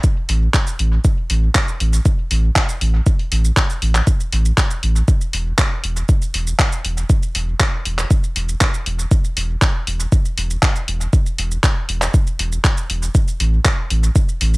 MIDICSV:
0, 0, Header, 1, 3, 480
1, 0, Start_track
1, 0, Tempo, 504202
1, 998, Time_signature, 4, 2, 24, 8
1, 13875, End_track
2, 0, Start_track
2, 0, Title_t, "Sub bass"
2, 0, Program_c, 0, 38
2, 278, Note_on_c, 0, 33, 99
2, 456, Note_off_c, 0, 33, 0
2, 757, Note_on_c, 0, 33, 96
2, 936, Note_off_c, 0, 33, 0
2, 1238, Note_on_c, 0, 33, 100
2, 1416, Note_off_c, 0, 33, 0
2, 1719, Note_on_c, 0, 33, 92
2, 1897, Note_off_c, 0, 33, 0
2, 2198, Note_on_c, 0, 33, 103
2, 2376, Note_off_c, 0, 33, 0
2, 2677, Note_on_c, 0, 33, 100
2, 2856, Note_off_c, 0, 33, 0
2, 3158, Note_on_c, 0, 33, 100
2, 3336, Note_off_c, 0, 33, 0
2, 3637, Note_on_c, 0, 33, 93
2, 3816, Note_off_c, 0, 33, 0
2, 4119, Note_on_c, 0, 33, 100
2, 4296, Note_off_c, 0, 33, 0
2, 4599, Note_on_c, 0, 33, 100
2, 4777, Note_off_c, 0, 33, 0
2, 5078, Note_on_c, 0, 28, 99
2, 5256, Note_off_c, 0, 28, 0
2, 5558, Note_on_c, 0, 28, 92
2, 5736, Note_off_c, 0, 28, 0
2, 6038, Note_on_c, 0, 28, 105
2, 6216, Note_off_c, 0, 28, 0
2, 6518, Note_on_c, 0, 28, 99
2, 6696, Note_off_c, 0, 28, 0
2, 6998, Note_on_c, 0, 28, 99
2, 7176, Note_off_c, 0, 28, 0
2, 7478, Note_on_c, 0, 28, 89
2, 7656, Note_off_c, 0, 28, 0
2, 7957, Note_on_c, 0, 28, 106
2, 8136, Note_off_c, 0, 28, 0
2, 8438, Note_on_c, 0, 28, 99
2, 8616, Note_off_c, 0, 28, 0
2, 8918, Note_on_c, 0, 28, 99
2, 9096, Note_off_c, 0, 28, 0
2, 9398, Note_on_c, 0, 28, 92
2, 9576, Note_off_c, 0, 28, 0
2, 9877, Note_on_c, 0, 28, 106
2, 10056, Note_off_c, 0, 28, 0
2, 10357, Note_on_c, 0, 28, 99
2, 10535, Note_off_c, 0, 28, 0
2, 10837, Note_on_c, 0, 28, 101
2, 11016, Note_off_c, 0, 28, 0
2, 11317, Note_on_c, 0, 28, 92
2, 11496, Note_off_c, 0, 28, 0
2, 11799, Note_on_c, 0, 28, 107
2, 11976, Note_off_c, 0, 28, 0
2, 12278, Note_on_c, 0, 28, 97
2, 12456, Note_off_c, 0, 28, 0
2, 12759, Note_on_c, 0, 33, 100
2, 12937, Note_off_c, 0, 33, 0
2, 13240, Note_on_c, 0, 33, 94
2, 13417, Note_off_c, 0, 33, 0
2, 13719, Note_on_c, 0, 33, 106
2, 13875, Note_off_c, 0, 33, 0
2, 13875, End_track
3, 0, Start_track
3, 0, Title_t, "Drums"
3, 36, Note_on_c, 9, 82, 57
3, 37, Note_on_c, 9, 36, 112
3, 131, Note_off_c, 9, 82, 0
3, 132, Note_off_c, 9, 36, 0
3, 276, Note_on_c, 9, 46, 76
3, 371, Note_off_c, 9, 46, 0
3, 516, Note_on_c, 9, 39, 75
3, 516, Note_on_c, 9, 82, 54
3, 517, Note_on_c, 9, 36, 102
3, 611, Note_off_c, 9, 39, 0
3, 611, Note_off_c, 9, 82, 0
3, 612, Note_off_c, 9, 36, 0
3, 639, Note_on_c, 9, 82, 38
3, 734, Note_off_c, 9, 82, 0
3, 756, Note_on_c, 9, 46, 70
3, 851, Note_off_c, 9, 46, 0
3, 996, Note_on_c, 9, 82, 56
3, 998, Note_on_c, 9, 36, 112
3, 1091, Note_off_c, 9, 82, 0
3, 1093, Note_off_c, 9, 36, 0
3, 1237, Note_on_c, 9, 46, 78
3, 1332, Note_off_c, 9, 46, 0
3, 1477, Note_on_c, 9, 39, 81
3, 1477, Note_on_c, 9, 82, 57
3, 1478, Note_on_c, 9, 36, 100
3, 1572, Note_off_c, 9, 39, 0
3, 1572, Note_off_c, 9, 82, 0
3, 1573, Note_off_c, 9, 36, 0
3, 1600, Note_on_c, 9, 82, 26
3, 1695, Note_off_c, 9, 82, 0
3, 1718, Note_on_c, 9, 46, 66
3, 1813, Note_off_c, 9, 46, 0
3, 1841, Note_on_c, 9, 82, 38
3, 1936, Note_off_c, 9, 82, 0
3, 1958, Note_on_c, 9, 36, 110
3, 1958, Note_on_c, 9, 82, 58
3, 2053, Note_off_c, 9, 36, 0
3, 2053, Note_off_c, 9, 82, 0
3, 2198, Note_on_c, 9, 46, 78
3, 2293, Note_off_c, 9, 46, 0
3, 2437, Note_on_c, 9, 39, 79
3, 2437, Note_on_c, 9, 82, 54
3, 2438, Note_on_c, 9, 36, 102
3, 2533, Note_off_c, 9, 36, 0
3, 2533, Note_off_c, 9, 39, 0
3, 2533, Note_off_c, 9, 82, 0
3, 2560, Note_on_c, 9, 82, 39
3, 2655, Note_off_c, 9, 82, 0
3, 2677, Note_on_c, 9, 46, 69
3, 2773, Note_off_c, 9, 46, 0
3, 2917, Note_on_c, 9, 36, 115
3, 2917, Note_on_c, 9, 82, 59
3, 3012, Note_off_c, 9, 82, 0
3, 3013, Note_off_c, 9, 36, 0
3, 3040, Note_on_c, 9, 46, 31
3, 3135, Note_off_c, 9, 46, 0
3, 3157, Note_on_c, 9, 46, 81
3, 3252, Note_off_c, 9, 46, 0
3, 3280, Note_on_c, 9, 82, 27
3, 3376, Note_off_c, 9, 82, 0
3, 3397, Note_on_c, 9, 36, 103
3, 3398, Note_on_c, 9, 39, 83
3, 3398, Note_on_c, 9, 82, 59
3, 3493, Note_off_c, 9, 36, 0
3, 3493, Note_off_c, 9, 39, 0
3, 3493, Note_off_c, 9, 82, 0
3, 3521, Note_on_c, 9, 82, 28
3, 3617, Note_off_c, 9, 82, 0
3, 3638, Note_on_c, 9, 46, 68
3, 3733, Note_off_c, 9, 46, 0
3, 3761, Note_on_c, 9, 39, 38
3, 3761, Note_on_c, 9, 82, 39
3, 3856, Note_off_c, 9, 39, 0
3, 3856, Note_off_c, 9, 82, 0
3, 3877, Note_on_c, 9, 36, 114
3, 3878, Note_on_c, 9, 82, 61
3, 3972, Note_off_c, 9, 36, 0
3, 3973, Note_off_c, 9, 82, 0
3, 4001, Note_on_c, 9, 82, 28
3, 4096, Note_off_c, 9, 82, 0
3, 4118, Note_on_c, 9, 46, 79
3, 4213, Note_off_c, 9, 46, 0
3, 4241, Note_on_c, 9, 82, 27
3, 4336, Note_off_c, 9, 82, 0
3, 4357, Note_on_c, 9, 36, 103
3, 4358, Note_on_c, 9, 39, 79
3, 4358, Note_on_c, 9, 82, 58
3, 4452, Note_off_c, 9, 36, 0
3, 4453, Note_off_c, 9, 39, 0
3, 4453, Note_off_c, 9, 82, 0
3, 4480, Note_on_c, 9, 82, 39
3, 4576, Note_off_c, 9, 82, 0
3, 4597, Note_on_c, 9, 46, 66
3, 4693, Note_off_c, 9, 46, 0
3, 4720, Note_on_c, 9, 82, 29
3, 4815, Note_off_c, 9, 82, 0
3, 4837, Note_on_c, 9, 36, 122
3, 4838, Note_on_c, 9, 82, 62
3, 4932, Note_off_c, 9, 36, 0
3, 4933, Note_off_c, 9, 82, 0
3, 4960, Note_on_c, 9, 82, 28
3, 5055, Note_off_c, 9, 82, 0
3, 5077, Note_on_c, 9, 46, 83
3, 5172, Note_off_c, 9, 46, 0
3, 5317, Note_on_c, 9, 36, 106
3, 5317, Note_on_c, 9, 39, 83
3, 5317, Note_on_c, 9, 82, 63
3, 5412, Note_off_c, 9, 36, 0
3, 5412, Note_off_c, 9, 39, 0
3, 5412, Note_off_c, 9, 82, 0
3, 5556, Note_on_c, 9, 46, 72
3, 5651, Note_off_c, 9, 46, 0
3, 5679, Note_on_c, 9, 82, 41
3, 5774, Note_off_c, 9, 82, 0
3, 5797, Note_on_c, 9, 36, 120
3, 5797, Note_on_c, 9, 82, 63
3, 5892, Note_off_c, 9, 36, 0
3, 5892, Note_off_c, 9, 82, 0
3, 5920, Note_on_c, 9, 82, 29
3, 6015, Note_off_c, 9, 82, 0
3, 6037, Note_on_c, 9, 46, 81
3, 6132, Note_off_c, 9, 46, 0
3, 6160, Note_on_c, 9, 82, 27
3, 6255, Note_off_c, 9, 82, 0
3, 6277, Note_on_c, 9, 36, 104
3, 6278, Note_on_c, 9, 39, 79
3, 6278, Note_on_c, 9, 82, 60
3, 6372, Note_off_c, 9, 36, 0
3, 6373, Note_off_c, 9, 39, 0
3, 6373, Note_off_c, 9, 82, 0
3, 6400, Note_on_c, 9, 82, 41
3, 6495, Note_off_c, 9, 82, 0
3, 6518, Note_on_c, 9, 46, 72
3, 6613, Note_off_c, 9, 46, 0
3, 6641, Note_on_c, 9, 82, 30
3, 6736, Note_off_c, 9, 82, 0
3, 6757, Note_on_c, 9, 36, 121
3, 6758, Note_on_c, 9, 82, 60
3, 6852, Note_off_c, 9, 36, 0
3, 6853, Note_off_c, 9, 82, 0
3, 6881, Note_on_c, 9, 82, 29
3, 6976, Note_off_c, 9, 82, 0
3, 6997, Note_on_c, 9, 46, 87
3, 7092, Note_off_c, 9, 46, 0
3, 7237, Note_on_c, 9, 36, 112
3, 7238, Note_on_c, 9, 39, 81
3, 7238, Note_on_c, 9, 82, 61
3, 7332, Note_off_c, 9, 36, 0
3, 7333, Note_off_c, 9, 39, 0
3, 7333, Note_off_c, 9, 82, 0
3, 7477, Note_on_c, 9, 46, 75
3, 7572, Note_off_c, 9, 46, 0
3, 7601, Note_on_c, 9, 39, 38
3, 7601, Note_on_c, 9, 82, 42
3, 7696, Note_off_c, 9, 39, 0
3, 7696, Note_off_c, 9, 82, 0
3, 7717, Note_on_c, 9, 36, 120
3, 7718, Note_on_c, 9, 82, 64
3, 7812, Note_off_c, 9, 36, 0
3, 7813, Note_off_c, 9, 82, 0
3, 7840, Note_on_c, 9, 82, 29
3, 7935, Note_off_c, 9, 82, 0
3, 7957, Note_on_c, 9, 46, 85
3, 8052, Note_off_c, 9, 46, 0
3, 8080, Note_on_c, 9, 82, 28
3, 8175, Note_off_c, 9, 82, 0
3, 8196, Note_on_c, 9, 39, 79
3, 8196, Note_on_c, 9, 82, 59
3, 8197, Note_on_c, 9, 36, 112
3, 8292, Note_off_c, 9, 36, 0
3, 8292, Note_off_c, 9, 39, 0
3, 8292, Note_off_c, 9, 82, 0
3, 8320, Note_on_c, 9, 82, 42
3, 8415, Note_off_c, 9, 82, 0
3, 8437, Note_on_c, 9, 46, 74
3, 8532, Note_off_c, 9, 46, 0
3, 8560, Note_on_c, 9, 82, 29
3, 8656, Note_off_c, 9, 82, 0
3, 8677, Note_on_c, 9, 36, 127
3, 8677, Note_on_c, 9, 82, 60
3, 8772, Note_off_c, 9, 36, 0
3, 8773, Note_off_c, 9, 82, 0
3, 8800, Note_on_c, 9, 82, 28
3, 8895, Note_off_c, 9, 82, 0
3, 8918, Note_on_c, 9, 46, 88
3, 9013, Note_off_c, 9, 46, 0
3, 9157, Note_on_c, 9, 36, 113
3, 9158, Note_on_c, 9, 39, 77
3, 9158, Note_on_c, 9, 82, 62
3, 9252, Note_off_c, 9, 36, 0
3, 9253, Note_off_c, 9, 39, 0
3, 9253, Note_off_c, 9, 82, 0
3, 9398, Note_on_c, 9, 46, 77
3, 9493, Note_off_c, 9, 46, 0
3, 9521, Note_on_c, 9, 82, 42
3, 9616, Note_off_c, 9, 82, 0
3, 9637, Note_on_c, 9, 36, 124
3, 9638, Note_on_c, 9, 82, 61
3, 9732, Note_off_c, 9, 36, 0
3, 9733, Note_off_c, 9, 82, 0
3, 9760, Note_on_c, 9, 82, 29
3, 9855, Note_off_c, 9, 82, 0
3, 9877, Note_on_c, 9, 46, 88
3, 9973, Note_off_c, 9, 46, 0
3, 10001, Note_on_c, 9, 82, 27
3, 10096, Note_off_c, 9, 82, 0
3, 10117, Note_on_c, 9, 36, 112
3, 10117, Note_on_c, 9, 39, 74
3, 10117, Note_on_c, 9, 82, 60
3, 10212, Note_off_c, 9, 36, 0
3, 10212, Note_off_c, 9, 39, 0
3, 10212, Note_off_c, 9, 82, 0
3, 10241, Note_on_c, 9, 82, 42
3, 10336, Note_off_c, 9, 82, 0
3, 10358, Note_on_c, 9, 46, 76
3, 10453, Note_off_c, 9, 46, 0
3, 10481, Note_on_c, 9, 82, 30
3, 10576, Note_off_c, 9, 82, 0
3, 10597, Note_on_c, 9, 36, 122
3, 10598, Note_on_c, 9, 82, 57
3, 10692, Note_off_c, 9, 36, 0
3, 10693, Note_off_c, 9, 82, 0
3, 10720, Note_on_c, 9, 82, 27
3, 10815, Note_off_c, 9, 82, 0
3, 10838, Note_on_c, 9, 46, 86
3, 10933, Note_off_c, 9, 46, 0
3, 10960, Note_on_c, 9, 82, 28
3, 11056, Note_off_c, 9, 82, 0
3, 11077, Note_on_c, 9, 36, 110
3, 11078, Note_on_c, 9, 39, 76
3, 11078, Note_on_c, 9, 82, 59
3, 11173, Note_off_c, 9, 36, 0
3, 11173, Note_off_c, 9, 39, 0
3, 11173, Note_off_c, 9, 82, 0
3, 11317, Note_on_c, 9, 46, 76
3, 11412, Note_off_c, 9, 46, 0
3, 11441, Note_on_c, 9, 39, 35
3, 11441, Note_on_c, 9, 82, 39
3, 11536, Note_off_c, 9, 39, 0
3, 11536, Note_off_c, 9, 82, 0
3, 11558, Note_on_c, 9, 36, 126
3, 11558, Note_on_c, 9, 82, 61
3, 11653, Note_off_c, 9, 36, 0
3, 11653, Note_off_c, 9, 82, 0
3, 11681, Note_on_c, 9, 82, 28
3, 11777, Note_off_c, 9, 82, 0
3, 11798, Note_on_c, 9, 46, 88
3, 11893, Note_off_c, 9, 46, 0
3, 11921, Note_on_c, 9, 82, 27
3, 12017, Note_off_c, 9, 82, 0
3, 12038, Note_on_c, 9, 36, 112
3, 12039, Note_on_c, 9, 39, 75
3, 12039, Note_on_c, 9, 82, 57
3, 12133, Note_off_c, 9, 36, 0
3, 12134, Note_off_c, 9, 39, 0
3, 12134, Note_off_c, 9, 82, 0
3, 12162, Note_on_c, 9, 82, 39
3, 12257, Note_off_c, 9, 82, 0
3, 12279, Note_on_c, 9, 46, 75
3, 12374, Note_off_c, 9, 46, 0
3, 12401, Note_on_c, 9, 82, 28
3, 12497, Note_off_c, 9, 82, 0
3, 12518, Note_on_c, 9, 36, 123
3, 12519, Note_on_c, 9, 82, 57
3, 12613, Note_off_c, 9, 36, 0
3, 12614, Note_off_c, 9, 82, 0
3, 12641, Note_on_c, 9, 82, 27
3, 12736, Note_off_c, 9, 82, 0
3, 12759, Note_on_c, 9, 46, 83
3, 12854, Note_off_c, 9, 46, 0
3, 12998, Note_on_c, 9, 36, 111
3, 12998, Note_on_c, 9, 39, 76
3, 12998, Note_on_c, 9, 82, 57
3, 13093, Note_off_c, 9, 36, 0
3, 13093, Note_off_c, 9, 39, 0
3, 13093, Note_off_c, 9, 82, 0
3, 13238, Note_on_c, 9, 46, 74
3, 13333, Note_off_c, 9, 46, 0
3, 13362, Note_on_c, 9, 82, 39
3, 13457, Note_off_c, 9, 82, 0
3, 13478, Note_on_c, 9, 36, 120
3, 13479, Note_on_c, 9, 82, 58
3, 13573, Note_off_c, 9, 36, 0
3, 13574, Note_off_c, 9, 82, 0
3, 13602, Note_on_c, 9, 82, 26
3, 13697, Note_off_c, 9, 82, 0
3, 13718, Note_on_c, 9, 46, 84
3, 13814, Note_off_c, 9, 46, 0
3, 13841, Note_on_c, 9, 82, 26
3, 13875, Note_off_c, 9, 82, 0
3, 13875, End_track
0, 0, End_of_file